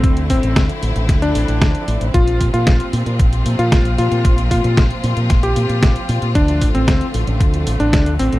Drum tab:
HH |xxoxxxoxxxoxxxox|xxoxxxoxxxoxxxox|xxoxxxoxxxoxxxox|xxoxxxoxxxoxxxox|
SD |----o---o---o---|----o-------o---|----o---o---o---|----o-------o---|
BD |o-o-o---o---o---|o-o-o---o---o---|o-o-o---o---o---|o-o-o---o---o---|